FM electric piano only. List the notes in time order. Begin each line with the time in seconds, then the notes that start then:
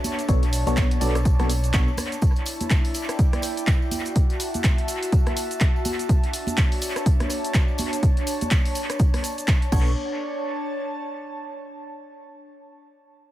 0.29 B2 B3 D4 A4 C#5
0.67 B2 B3 D4 A4 C#5
1.01 B2 B3 D4 A4 D5
1.40 B2 B3 D4 A4 C#5
1.74 B2 B3 D4 A4 C#5
9.72 B3 D4 A4 C#5